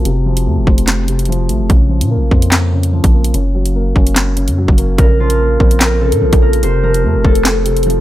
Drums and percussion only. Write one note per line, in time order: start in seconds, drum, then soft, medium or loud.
0.05 closed hi-hat medium
0.37 closed hi-hat medium
0.67 kick medium
0.78 closed hi-hat medium
0.87 snare loud
0.87 clap medium
0.87 closed hi-hat medium
1.08 closed hi-hat medium
1.19 closed hi-hat medium
1.25 closed hi-hat medium
1.32 closed hi-hat medium
1.49 closed hi-hat medium
1.70 kick loud
1.70 closed hi-hat medium
2.01 closed hi-hat medium
2.31 kick medium
2.42 closed hi-hat medium
2.52 snare loud
2.52 clap medium
2.83 closed hi-hat medium
3.04 kick loud
3.04 closed hi-hat medium
3.24 closed hi-hat medium
3.34 closed hi-hat medium
3.66 closed hi-hat medium
3.96 kick medium
4.07 closed hi-hat medium
4.16 snare loud
4.16 clap loud
4.16 closed hi-hat medium
4.37 closed hi-hat medium
4.48 closed hi-hat medium
4.68 kick loud
4.78 closed hi-hat medium
4.98 kick loud
4.98 closed hi-hat medium
5.30 closed hi-hat medium
5.60 kick medium
5.71 closed hi-hat medium
5.80 snare loud
5.80 clap medium
6.12 closed hi-hat medium
6.33 kick loud
6.33 closed hi-hat medium
6.53 closed hi-hat medium
6.63 closed hi-hat medium
6.94 closed hi-hat medium
7.25 kick medium
7.35 closed hi-hat medium
7.45 snare loud
7.45 clap medium
7.45 closed hi-hat medium
7.66 closed hi-hat medium
7.77 closed hi-hat medium
7.83 closed hi-hat medium
7.90 closed hi-hat medium